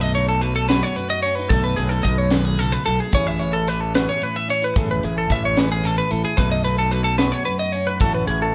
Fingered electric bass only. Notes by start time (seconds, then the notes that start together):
Already playing: B1
1.50 B1
1.78 B1
2.05 B1
2.88 B1
3.13 A1
4.76 A1
5.05 A1
5.30 A1
6.12 A1
6.38 B1
8.00 A1
8.28 A1